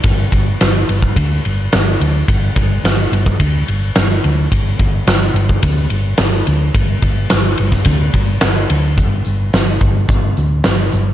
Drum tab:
RD |x-x-x-x-x-x-x-x-|x-x-x-x-x-x-x-x-|x-x-x-x-x-x-x-x-|x-x-x-x-x-x-x-x-|
HH |----------------|----------------|----------------|----------------|
SD |----o-------o---|----o-------o---|----o-------o---|----o--o----o---|
BD |o-o----oo-------|o-o----oo-------|o-o----oo-------|o-o----oo-o-----|

RD |----------------|
HH |x-x-x-x-x-x-x-x-|
SD |----o-------o---|
BD |o-----o-o-------|